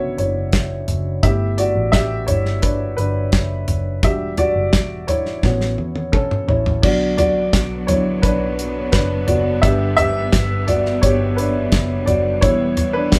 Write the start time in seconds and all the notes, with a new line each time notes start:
Already playing: B1 C#3 D3 B3 C#4 F#4 B4 C#5 D5 E5 F#5
0.18 F#1 E4 C#5, closed hi-hat
0.53 kick, snare, closed hi-hat
0.88 F#1, closed hi-hat, floor tom
1.23 G1 A3 B3 E4 G4 E5, kick, closed hi-hat
1.58 F#4 D5, closed hi-hat
1.76 A1
1.92 G4 E5, kick, snare, closed hi-hat
2.26 G1 E4 C#5, closed hi-hat, floor tom
2.46 snare
2.62 D4 B4, kick, closed hi-hat
2.97 G1 D4 B4, closed hi-hat
3.32 F#1, kick, snare, closed hi-hat
3.68 F#1, closed hi-hat, floor tom
4.03 E1 G3 D4 F#4 G4 E5, kick, closed hi-hat
4.37 F#4 D5, closed hi-hat, floor tom
4.56 F#1
4.73 E1, kick, snare, closed hi-hat
5.07 E4 C#5, closed hi-hat, floor tom
5.26 snare
5.43 A1 B3 C#4 F#4, kick, snare
5.61 snare
5.78 E2, high tom
5.96 high tom
6.12 C#4 A4, kick, mid tom
6.31 mid tom
6.48 A1 E4 C#5, floor tom
6.66 floor tom
6.82 B1 D3 F#3 B3 F#4 D5, kick, crash
7.17 F#4 D5, closed hi-hat, floor tom
7.53 B1, kick, snare, closed hi-hat
7.87 D3 F#3 B3 E4 C#5, closed hi-hat, floor tom
8.22 B1 D4 B4, kick, closed hi-hat
8.59 closed hi-hat
8.92 F#1 D4 B4, kick, snare, closed hi-hat
9.27 F#1 F#4 D5, closed hi-hat, floor tom
9.62 G1 D3 G3 B3 G4 E5, kick, closed hi-hat
9.97 G4 E5, closed hi-hat, floor tom
10.33 G1, kick, snare, closed hi-hat
10.67 F#4 D5, closed hi-hat, floor tom
10.86 snare
11.01 G1 G4 C#5, kick, closed hi-hat
11.36 D4 B4, closed hi-hat
11.72 F#1, kick, snare, closed hi-hat
12.06 F#1 F#4 D5, closed hi-hat, floor tom
12.41 E1 E3 G3 B3 E4 C#5, kick, closed hi-hat
12.77 closed hi-hat, floor tom
12.93 D4 B4
13.12 E1, kick, snare, closed hi-hat